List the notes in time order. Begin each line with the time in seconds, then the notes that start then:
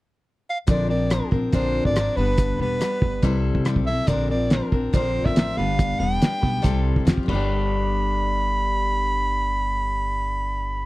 0.50 F5
0.67 A#1 A#2 D3 F3 C4 D4 A#4 D5, kick, closed hi-hat
0.88 F3 C4 D4 A#4 D5
1.10 F3 C4 D4 A#4, cross-stick, closed hi-hat
1.31 A#1 F3 C4 D4 A#4, kick
1.52 A#1 A#2 D3 F3 C4 D4 A#4 C5, kick, closed hi-hat
1.85 G#1 D5, kick
1.95 F3 C4 D4 A#4, cross-stick, closed hi-hat
2.17 G1 G2 D3 G3 B3 D4 B4
2.38 kick, closed hi-hat
2.58 E1 G3 B3 D4 B4
2.79 G3 B3 D4 B4, cross-stick, closed hi-hat
3.02 G1, kick
3.22 C2 C3 G3 C4 E4 A4, kick, closed hi-hat
3.55 C3, kick
3.65 G3 C4 E4 A4, cross-stick, closed hi-hat
3.76 B1, kick
3.86 C4 E4 A4 E5
4.07 A#1 A#2 D3 F3 C4 D4 A#4 D5, kick, closed hi-hat
4.29 F3 C4 D4 A#4 D5
4.50 F3 C4 D4 A#4, snare, closed hi-hat
4.72 A#1 F3 C4 D4 A#4, kick
4.93 A#1 A#2 D3 F3 C4 D4 A#4 C5, kick, closed hi-hat
5.25 A1 E5, kick, snare
5.36 F3 C4 D4 A#4, snare, closed hi-hat
5.57 G1 G2 D3 G3 B3 D4 B4 F5
5.79 kick, closed hi-hat
5.99 E1 G3 B3 D4 B4 G5
6.20 G3 B3 D4 B4, snare, closed hi-hat
6.41 B1 G3 B3 D4 B4, kick
6.62 C2 C3 G3 C4 E4 A4, kick, closed hi-hat
6.96 C3, kick
7.05 F2 F3 C4 F4 G4, snare, closed hi-hat
7.17 F#2, kick
7.23 G2 D3
7.28 G1 G3 B3 B5, kick, crash
7.33 D4 G4